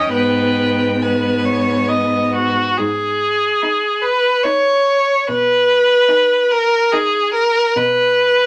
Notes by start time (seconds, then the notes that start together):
Already playing: D#2 C#4 D#5 G5
0.13 G#2 B3 B4 G5
1.01 B3 B4 G#5
1.45 C#5
1.89 D#5
2.35 F#4
2.77 G#2 G#4
3.62 D#4 B5
4.02 B4
4.43 D#4 C#5 B5
5.28 B2 B4
6.09 D#4 G#5
6.51 A#4
6.92 D#4 G#4 G#5
7.34 A#4
7.76 B2 B4